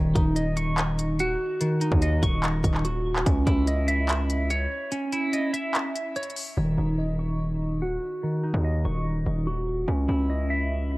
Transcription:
0.00 0.15 D#1 loud
0.00 1.19 D#3 medium
0.15 1.36 D#1 loud
0.15 1.40 D#4 medium
0.15 kick loud
0.15 closed hi-hat medium
0.36 1.60 D#5 medium
0.36 closed hi-hat medium
0.57 1.81 C#6 loud
0.57 closed hi-hat medium
0.78 clap loud
0.78 closed hi-hat medium
0.99 closed hi-hat medium
1.19 2.44 F#4 loud
1.19 closed hi-hat medium
1.61 2.85 D#3 medium
1.61 closed hi-hat medium
1.81 3.05 D#4 medium
1.81 closed hi-hat medium
1.92 2.22 D#2 loud
1.92 kick loud
2.02 3.26 D#5 medium
2.02 closed hi-hat medium
2.23 2.62 D#1 loud
2.23 3.26 C#6 loud
2.23 kick loud
2.23 closed hi-hat medium
2.43 clap loud
2.43 closed hi-hat medium
2.64 3.24 D#1 loud
2.64 kick loud
2.64 closed hi-hat medium
2.74 clap medium
2.85 3.26 F#4 loud
2.85 closed hi-hat medium
3.16 clap loud
3.26 3.46 C#2 loud
3.26 4.50 C#4 medium
3.26 kick loud
3.26 closed hi-hat medium
3.46 4.67 C#2 loud
3.46 4.71 E4 medium
3.46 kick loud
3.46 closed hi-hat medium
3.67 4.50 D#5 medium
3.67 closed hi-hat medium
3.88 5.12 E5 loud
3.88 closed hi-hat medium
4.09 clap loud
4.09 closed hi-hat medium
4.30 closed hi-hat medium
4.50 5.75 C#5 loud
4.50 closed hi-hat medium
4.92 6.16 C#4 loud
4.92 closed hi-hat medium
5.12 6.37 E4 medium
5.12 closed hi-hat medium
5.33 5.53 D#5 medium
5.33 closed hi-hat medium
5.53 6.57 E5 loud
5.53 closed hi-hat medium
5.74 clap loud
5.74 closed hi-hat medium
5.95 closed hi-hat medium
6.16 6.57 C#5 loud
6.16 closed hi-hat medium
6.23 closed hi-hat medium
6.30 closed hi-hat soft
6.36 open hi-hat medium
6.57 6.77 D#1 loud
6.57 7.81 D#3 medium
6.77 7.98 D#1 loud
6.77 8.02 D#4 medium
6.98 8.23 D#5 medium
7.19 8.43 C#6 medium
7.82 9.06 F#4 medium
8.23 9.47 D#3 medium
8.43 9.68 D#4 medium
8.54 8.84 D#2 loud
8.64 9.88 D#5 medium
8.85 9.24 D#1 loud
8.85 9.88 C#6 medium
9.26 9.86 D#1 loud
9.47 9.88 F#4 medium
9.88 10.08 C#2 loud
9.88 10.98 C#4 medium
10.09 10.98 C#2 loud
10.09 10.98 E4 medium
10.30 10.98 D#5 medium
10.50 10.98 E5 medium

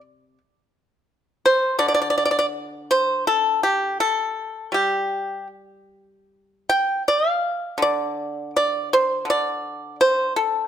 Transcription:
0.00 0.38 C3 soft
1.46 1.78 C5 medium
1.79 3.98 D3 soft
1.79 1.86 D5 medium
1.88 1.93 D5 medium
1.94 2.00 D5 medium
2.02 2.09 D5 medium
2.10 2.16 D5 medium
2.18 2.24 D5 soft
2.25 2.30 D5 medium
2.31 2.37 D5 soft
2.39 2.45 D5 medium
2.91 3.24 C5 medium
3.27 3.61 A4 medium
3.63 3.97 G4 medium
4.00 4.70 A4 medium
4.72 7.01 G3 soft
4.72 5.47 G4 soft
6.69 7.02 G5 medium
7.08 7.30 D5 medium
7.30 7.76 F5 medium
7.78 9.24 D3 soft
7.82 8.50 D5 medium
8.56 8.88 D5 medium
8.93 9.24 C5 medium
9.25 10.68 D3 soft
9.30 9.95 D5 medium
10.01 10.32 C5 medium
10.36 10.68 A4 medium

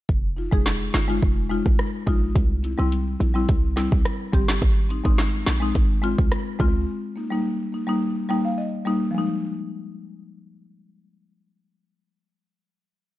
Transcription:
0.09 0.49 F1 loud
0.09 kick loud
0.37 0.43 D#4 medium
0.37 0.44 F4 loud
0.51 0.90 F1 medium
0.51 0.63 G#3 medium
0.51 0.63 D#4 medium
0.51 0.63 G#4 medium
0.51 kick medium
0.66 snare loud
0.93 1.20 G1 medium
0.93 0.99 D#4 medium
0.93 1.00 F4 medium
0.93 snare loud
1.08 1.19 G#3 medium
1.08 1.20 D#4 medium
1.08 1.20 F4 medium
1.23 1.62 F1 loud
1.23 kick loud
1.50 1.62 G#3 medium
1.50 1.62 D#4 medium
1.50 1.63 F4 medium
1.66 1.78 G#1 medium
1.66 kick medium
1.79 cross-stick medium
2.07 2.33 A#1 medium
2.07 2.19 G#3 medium
2.07 2.19 D#4 medium
2.07 2.20 F4 medium
2.07 kick medium
2.35 2.75 C2 loud
2.35 kick loud
2.35 closed hi-hat medium
2.63 2.69 C4 medium
2.63 2.70 E4 loud
2.63 closed hi-hat soft
2.78 3.17 C2 medium
2.78 2.89 G3 medium
2.78 2.89 C4 medium
2.78 2.90 E4 medium
2.92 closed hi-hat medium
3.19 3.46 A#1 medium
3.19 3.26 C4 medium
3.19 3.27 E4 medium
3.19 closed hi-hat soft
3.34 3.45 G3 medium
3.34 3.46 C4 medium
3.34 3.46 E4 medium
3.49 3.88 C2 loud
3.49 kick loud
3.49 closed hi-hat medium
3.76 3.88 G3 medium
3.76 3.89 C4 medium
3.76 3.89 E4 medium
3.76 snare medium
3.76 closed hi-hat medium
3.92 4.04 C2 medium
3.92 kick loud
4.05 cross-stick medium
4.05 closed hi-hat medium
4.33 4.59 G1 medium
4.33 4.45 G3 medium
4.33 4.46 C4 medium
4.33 4.46 G4 medium
4.33 kick loud
4.33 closed hi-hat soft
4.48 snare loud
4.62 5.01 G#1 loud
4.62 kick loud
4.62 closed hi-hat medium
4.89 4.96 C4 medium
4.89 4.97 D#4 loud
4.89 closed hi-hat soft
5.04 5.43 G#1 medium
5.04 5.15 G#3 medium
5.04 5.16 C4 medium
5.04 5.16 D#4 medium
5.04 kick loud
5.18 snare loud
5.18 closed hi-hat medium
5.45 5.73 A#1 medium
5.45 5.52 C4 medium
5.45 5.53 D#4 medium
5.45 snare loud
5.45 closed hi-hat soft
5.60 5.72 G#3 medium
5.60 5.72 C4 medium
5.60 5.73 D#4 medium
5.75 6.15 G#1 loud
5.75 kick loud
5.75 closed hi-hat medium
6.02 6.15 G#3 medium
6.02 6.15 C4 medium
6.02 6.16 F4 medium
6.02 closed hi-hat medium
6.18 6.31 C2 medium
6.18 kick loud
6.32 cross-stick medium
6.32 closed hi-hat medium
6.59 6.86 C#2 medium
6.59 6.71 G#3 medium
6.59 6.72 C4 medium
6.59 6.72 F4 loud
6.59 kick loud
6.59 closed hi-hat soft
7.16 7.22 A#3 medium
7.16 7.23 D#4 loud
7.30 7.42 G3 medium
7.30 7.42 A#3 medium
7.30 7.43 D#4 medium
7.72 7.79 A#3 medium
7.72 7.80 D#4 medium
7.87 7.98 G3 medium
7.87 7.99 A#3 medium
7.87 7.99 D#4 medium
8.29 8.41 G3 medium
8.29 8.42 A#3 medium
8.29 8.42 D#4 medium
8.29 8.44 G5 medium
8.45 8.57 F5 medium
8.58 9.11 D#5 medium
8.85 8.98 G3 medium
8.85 8.98 A#3 medium
8.85 8.99 D#4 medium
9.11 12.42 F3 medium
9.11 12.46 G#3 medium
9.18 12.49 D#4 medium

